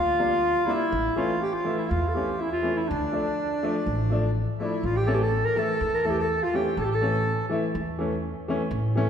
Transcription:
0.00 0.53 D2 medium
0.00 0.67 F4 loud
0.00 0.72 F4 loud
0.19 0.31 G3 medium
0.19 0.32 A#3 medium
0.19 0.32 D4 medium
0.65 0.80 G3 medium
0.65 0.80 A#3 medium
0.65 0.81 D4 medium
0.65 1.16 E4 medium
0.65 1.19 E4 medium
0.92 1.07 A1 medium
1.16 1.29 E3 medium
1.16 1.30 A3 medium
1.16 1.30 C#4 medium
1.16 1.40 F4 medium
1.16 1.43 F4 medium
1.42 1.53 G4 medium
1.42 1.55 G4 medium
1.52 1.76 F4 medium
1.52 1.80 F4 medium
1.64 1.78 E3 medium
1.64 1.78 A3 medium
1.64 1.79 E4 medium
1.76 1.90 E4 medium
1.76 1.92 E4 medium
1.88 2.50 E2 medium
1.88 2.40 F4 medium
1.88 2.10 F4 medium
2.09 2.17 A4 medium
2.15 2.27 E3 medium
2.15 2.27 A3 soft
2.15 2.28 C#4 medium
2.15 2.43 G4 medium
2.38 2.74 E4 medium
2.38 2.51 E4 medium
2.52 2.79 F4 medium
2.63 2.76 E3 medium
2.63 2.76 A3 medium
2.63 2.77 C#4 medium
2.76 2.89 E4 medium
2.88 3.05 D2 medium
2.88 4.35 D4 medium
2.88 4.31 D4 medium
3.12 3.25 F3 medium
3.12 3.25 A3 medium
3.12 3.25 D4 medium
3.63 3.75 F3 medium
3.63 3.75 A3 medium
3.63 3.76 D4 medium
3.86 4.45 A1 medium
4.10 4.23 F3 medium
4.10 4.23 A3 medium
4.10 4.24 D4 medium
4.59 4.72 F3 medium
4.59 4.72 A3 medium
4.59 4.73 D4 medium
4.59 4.84 E4 medium
4.59 4.87 E4 medium
4.83 5.42 A1 medium
4.83 4.97 F4 medium
4.83 4.98 F4 medium
4.96 5.09 G4 medium
5.06 5.20 E3 medium
5.06 5.20 A3 medium
5.06 5.20 C#4 medium
5.06 5.19 A4 medium
5.06 5.16 A4 loud
5.14 5.25 G4 medium
5.21 5.45 A4 medium
5.21 5.46 A4 medium
5.45 5.60 A#4 medium
5.45 5.58 A#4 medium
5.56 5.69 E3 medium
5.56 5.69 A3 medium
5.56 5.70 E4 medium
5.56 6.01 A4 medium
5.56 5.96 A4 loud
5.81 6.39 E2 medium
5.95 6.07 A#4 medium
6.03 6.17 E3 medium
6.03 6.18 A3 medium
6.03 6.18 E4 medium
6.03 6.17 A4 medium
6.03 6.12 A4 medium
6.11 6.23 G4 medium
6.19 6.40 A4 medium
6.19 6.45 A4 medium
6.42 6.54 F4 medium
6.42 6.57 F4 medium
6.54 6.66 E3 medium
6.54 6.66 A3 medium
6.54 6.67 C#4 medium
6.54 6.76 G4 medium
6.54 6.79 G4 medium
6.77 7.35 A1 medium
6.77 6.89 A4 medium
6.77 6.86 A4 medium
6.84 6.96 G4 medium
6.91 7.46 A4 medium
6.95 7.52 A4 loud
7.01 7.14 E3 medium
7.01 7.14 A3 medium
7.01 7.15 C#4 medium
7.50 7.62 E3 medium
7.50 7.63 A3 medium
7.50 7.63 E4 medium
7.75 8.33 E2 medium
7.99 8.11 E3 medium
7.99 8.12 A3 medium
7.99 8.12 C#4 medium
8.48 8.60 E3 medium
8.48 8.60 A3 medium
8.48 8.61 C#4 medium
8.71 9.10 A1 medium
8.95 9.07 E3 medium
8.95 9.08 A3 medium
8.95 9.08 C#4 medium

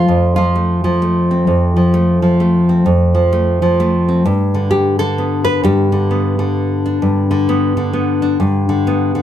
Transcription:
0.00 0.37 F3 medium
0.00 0.55 A3 soft
0.00 0.35 F4 medium
0.08 1.47 F2 medium
0.36 0.84 F3 medium
0.36 1.75 F4 medium
0.56 1.02 A3 soft
0.84 1.76 F3 medium
1.02 1.93 A3 soft
1.31 2.69 C4 soft
1.47 2.84 F2 medium
1.76 2.22 F3 medium
1.94 2.39 A3 medium
2.22 2.84 F3 medium
2.40 2.84 A3 medium
2.69 2.84 C4 medium
2.86 4.22 F2 medium
3.15 3.61 F3 medium
3.33 3.78 A3 medium
3.62 4.23 F3 medium
3.80 4.23 A3 medium
4.08 4.23 C4 soft
4.25 5.63 G2 medium
4.54 4.98 D3 medium
4.71 4.99 G4 medium
4.99 5.91 D3 medium
4.99 5.44 A4 medium
5.18 6.10 B3 soft
5.45 5.62 B4 loud
5.63 7.02 G2 medium
5.63 6.85 G4 medium
5.92 6.38 D3 medium
6.11 7.48 B3 soft
6.39 7.29 D3 medium
6.86 8.22 D4 soft
7.02 8.38 G2 medium
7.31 7.76 D3 medium
7.49 7.92 B3 medium
7.77 8.68 D3 medium
7.93 8.37 B3 medium
8.22 8.37 D4 medium
8.40 9.22 G2 medium
8.69 9.14 D3 medium
8.87 9.22 B3 medium
9.15 9.22 D3 medium

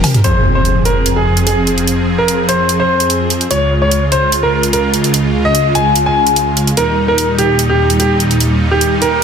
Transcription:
0.00 0.20 F3 medium
0.00 0.20 C4 medium
0.00 0.20 G4 medium
0.00 0.22 A#4 medium
0.00 open hi-hat loud
0.00 mid tom medium
0.00 low woodblock medium
0.14 closed hi-hat medium
0.14 mid tom medium
0.24 3.47 F2 medium
0.24 3.47 F3 medium
0.24 3.47 C4 medium
0.24 3.47 G#4 medium
0.24 0.44 C5 medium
0.24 closed hi-hat medium
0.24 impact medium
0.55 0.76 C5 medium
0.65 closed hi-hat medium
0.85 1.06 A#4 medium
0.85 closed hi-hat soft
1.06 closed hi-hat medium
1.16 1.37 G#4 medium
1.37 closed hi-hat soft
1.47 1.60 G#4 medium
1.47 closed hi-hat medium
1.67 closed hi-hat soft
1.78 closed hi-hat soft
1.87 closed hi-hat medium
2.18 2.39 A#4 medium
2.28 closed hi-hat medium
2.49 2.69 C5 medium
2.49 closed hi-hat soft
2.69 closed hi-hat medium
2.80 3.43 C5 medium
3.00 closed hi-hat soft
3.10 closed hi-hat medium
3.30 closed hi-hat soft
3.41 closed hi-hat soft
3.51 6.74 C#2 medium
3.51 6.74 C#3 medium
3.51 6.74 G#3 medium
3.51 6.74 F4 medium
3.51 3.71 C#5 medium
3.51 closed hi-hat medium
3.82 4.02 C#5 medium
3.91 closed hi-hat medium
4.12 4.32 C5 medium
4.12 closed hi-hat soft
4.32 closed hi-hat medium
4.43 4.63 A#4 medium
4.63 closed hi-hat soft
4.73 4.87 A#4 medium
4.73 closed hi-hat medium
4.94 closed hi-hat medium
5.04 closed hi-hat soft
5.14 closed hi-hat medium
5.45 5.65 D#5 medium
5.55 closed hi-hat medium
5.75 5.95 G#5 medium
5.75 closed hi-hat soft
5.96 closed hi-hat medium
6.06 6.69 G#5 medium
6.27 closed hi-hat soft
6.36 closed hi-hat medium
6.57 closed hi-hat soft
6.67 closed hi-hat soft
6.77 9.24 D#2 medium
6.77 9.24 A#2 medium
6.77 9.24 G3 medium
6.77 9.24 D#4 medium
6.77 6.98 A#4 medium
6.77 closed hi-hat medium
7.08 7.29 A#4 medium
7.18 closed hi-hat medium
7.38 7.59 G4 medium
7.38 closed hi-hat soft
7.59 closed hi-hat medium
7.70 7.90 G4 medium
7.90 closed hi-hat soft
8.00 8.13 G4 medium
8.00 closed hi-hat medium
8.20 closed hi-hat soft
8.31 closed hi-hat soft
8.40 closed hi-hat medium
8.71 8.92 G4 medium
8.81 closed hi-hat medium
9.02 9.22 A#4 medium
9.02 closed hi-hat soft

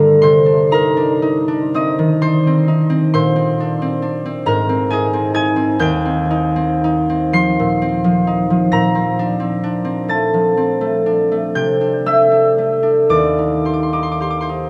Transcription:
0.00 0.24 G2 medium
0.00 0.24 D3 medium
0.00 2.92 G3 soft
0.00 0.24 A3 medium
0.00 0.45 D4 medium
0.00 0.72 A#4 medium
0.00 0.22 C5 medium
0.00 1.29 D5 medium
0.00 0.71 A#5 medium
0.00 1.27 D6 medium
0.22 3.17 C3 medium
0.22 2.21 C5 medium
0.22 2.20 C6 medium
0.46 0.95 D4 medium
0.71 1.21 D#4 medium
0.71 4.46 A#4 medium
0.71 4.45 A#5 medium
0.97 1.47 D4 medium
1.22 2.67 D#4 medium
1.48 2.21 D4 medium
1.74 2.46 C4 medium
1.74 3.17 D#5 medium
1.74 3.16 D#6 medium
1.99 3.16 D#3 medium
2.21 3.59 D4 medium
2.21 3.13 C5 medium
2.21 3.12 C6 medium
2.47 2.89 C4 medium
2.68 3.16 D#4 medium
2.90 3.35 C4 medium
3.14 4.51 A#2 medium
3.14 7.05 C5 medium
3.14 7.04 C6 medium
3.36 3.81 C4 medium
3.60 4.01 D4 medium
3.82 4.24 C4 medium
4.02 4.50 D4 medium
4.25 4.68 C4 medium
4.46 5.85 G#2 medium
4.46 8.38 A#4 medium
4.46 5.21 A#5 medium
4.69 5.12 C4 medium
4.90 5.33 D#4 medium
4.90 5.87 G#4 medium
4.90 5.35 G#5 medium
5.13 5.55 C4 medium
5.34 6.29 D#4 medium
5.34 5.86 G#5 medium
5.34 5.85 G#6 loud
5.56 6.04 C4 medium
5.79 8.75 D#2 medium
5.79 8.76 G5 medium
5.79 8.75 G6 loud
6.05 6.55 C4 medium
6.31 6.83 D#4 medium
6.56 7.08 C4 medium
6.84 8.26 D#4 medium
7.10 7.80 C4 medium
7.33 8.03 F3 medium
7.33 11.24 C6 medium
7.33 11.23 C7 loud
7.59 8.71 A#2 medium
7.82 8.94 C4 medium
8.04 8.49 F3 medium
8.27 8.77 D#4 medium
8.50 10.32 F3 medium
8.72 11.59 A#2 medium
8.72 12.63 A#5 medium
8.72 12.62 A#6 loud
8.95 9.39 C4 medium
9.19 9.62 D4 medium
9.40 9.83 C4 medium
9.64 11.05 D4 medium
9.85 10.56 C4 medium
10.08 10.80 A3 soft
10.08 13.12 A5 medium
10.08 13.12 A6 medium
10.34 11.59 F3 soft
10.57 13.12 C4 medium
10.81 11.30 A3 soft
11.06 11.80 D4 medium
11.32 12.05 A3 soft
11.55 13.12 C3 medium
11.55 14.70 G5 medium
11.55 14.70 G6 medium
11.81 12.30 D4 soft
12.06 12.57 A3 soft
12.06 13.13 E5 medium
12.06 13.13 E6 medium
12.31 12.82 D4 soft
12.58 13.13 A3 soft
12.83 14.70 D4 soft
13.09 14.70 D#2 medium
13.09 14.70 D5 medium
13.09 13.72 D6 medium
13.38 13.92 D#4 soft
13.65 14.19 G4 soft
13.65 13.79 C6 medium
13.73 13.88 D6 medium
13.83 13.98 C6 medium
13.93 14.48 D#4 soft
13.93 14.07 D6 medium
14.03 14.17 C6 medium
14.12 14.26 D6 medium
14.21 14.70 G4 soft
14.21 14.36 C6 medium
14.30 14.45 D6 medium
14.41 14.70 C5 soft
14.41 14.70 C6 medium
14.49 14.70 D#4 soft

